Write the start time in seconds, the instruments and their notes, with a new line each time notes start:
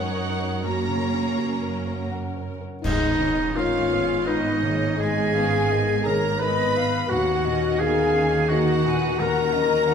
Already playing: felt piano F#2 C#3 C#4 F#4 A#4 C#5 F#5, harp F#2 C#3 C#4 F#4 G#4 F#5 G#5 C#6, double bass section F#2, cello section F#3, viola section D#4 C#5, french horn section A#4, violin section A#4 F#5
0.11 harp C#5
0.16 felt piano C#5
0.40 felt piano A#4
0.46 harp F#4
0.63 felt piano F#2, harp F#2, cello section A#3, viola section C#4 A#4, french horn section F#4, violin section C#5 A#5
0.83 harp C#3
0.88 felt piano C#3
1.02 harp C#4
1.13 felt piano C#4
1.20 harp F#4
1.38 felt piano F#4
1.57 harp C#5
1.63 felt piano A#4
1.75 harp F#5
1.87 felt piano C#5
2.11 harp F#5, felt piano F#5
2.29 harp C#5
2.36 felt piano C#5
2.61 felt piano A#4
2.66 harp F#4
2.81 double bass section G#1, harp G#2, timpani G#2, cello section G#2, felt piano G#2, viola section B3 D#4, french horn section D#4, oboe D#4, violin section D#5, concert bass drum, crash
3.19 harp D#3, felt piano D#3, viola section C#4
3.55 viola section A#3, felt piano D#4 A#4, harp D#4, french horn section F4, oboe F4, flute C#5, violin section F5
3.91 viola section G#3, felt piano B3, harp B3
4.25 viola section B3, oboe D#4, felt piano D#4 B4, french horn section D#4, flute B4, harp D#5, violin section D#5
4.62 felt piano D#3, viola section A#3, harp G#4, flute C#5
4.98 harp G#2, felt piano G#2, viola section G#3 B3, french horn section G#4, oboe G#4, flute D#5, violin section G#5
5.33 harp D#3, felt piano B3, viola section C#4, flute F5
5.70 viola section B3, harp D#4, felt piano D#4 A#4, flute D#5
6.04 felt piano D#3, viola section A#3, french horn section A#4, oboe A#4, flute C#5, violin section A#5
6.38 viola section G#3, felt piano D#4 B4, french horn section B4, oboe B4, harp D#5, flute D#5, violin section B5
6.43 viola section B3
6.76 felt piano B3, viola section B3, flute F5
7.09 felt piano D#2, double bass section D#2, harp D#3, cello section D#3, viola section A#3 C#4, french horn section F#4, oboe F#4, violin section F#5, flute F#5
7.44 felt piano A#2, harp C#4, viola section C#4, flute D#5
7.79 viola section B3 D#4, harp D#4, felt piano D#4 A#4, oboe G#4, french horn section G#4, flute F5, violin section G#5
8.15 viola section A#3, felt piano C#4, harp C#5
8.49 viola section A#3 D#4, felt piano D#4 A#4, oboe F#4, french horn section F#4, flute D#5, harp D#5, violin section F#5
8.85 felt piano A#2, harp F#4, viola section B4, flute G#5
9.19 felt piano D#2, harp D#3, viola section C#4 F#4, oboe A#4, french horn section A#4, flute F#5, violin section A#5
9.53 harp F#3, felt piano C#4, viola section F#4, flute D#5
9.87 harp D#4, felt piano D#4 A#4, flute F#5